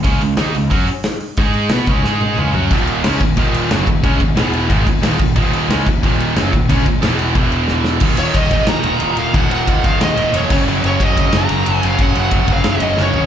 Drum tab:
CC |--------|--------|xxxxxxxx|xxxxxxxx|
RD |--------|--------|--------|--------|
HH |oooooooo|oooo----|--------|--------|
SD |--o---o-|--o-o---|--o---o-|--o---o-|
T1 |--------|-----o--|--------|--------|
T2 |--------|------o-|--------|--------|
FT |--------|-------o|--------|--------|
BD |o---o---|o--o----|o--oo--o|oo--oo-o|

CC |xxxxxxxx|xxxxxx--|x-------|-------x|
RD |--------|--------|-xxxxxxx|xxxxxxx-|
HH |--------|--------|--------|--------|
SD |--o---o-|--o---oo|----o---|----o---|
T1 |--------|--------|--------|--------|
T2 |--------|--------|--------|--------|
FT |--------|--------|--------|--------|
BD |o--oo--o|oo--o---|o-oo----|o-oo---o|

CC |--------|--------|
RD |-xxxxxxx|xxxxxx--|
HH |--------|--------|
SD |----o---|----o-o-|
T1 |--------|--------|
T2 |--------|--------|
FT |--------|-------o|
BD |--oo----|o-oo----|